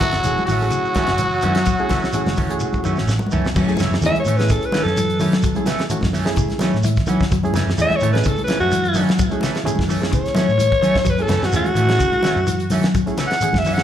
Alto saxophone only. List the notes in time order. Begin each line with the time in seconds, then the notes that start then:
4.06 E5
4.20 C#5
4.37 B4
4.52 A4
4.66 B4
4.83 A4
7.82 E5
7.96 C#5
8.13 B4
8.28 A4
8.44 B4
8.60 F#4
10.14 C#5
11.10 B4
11.22 A4
11.44 F#4
11.56 F#4
13.27 F#5
13.58 E5
13.74 F#5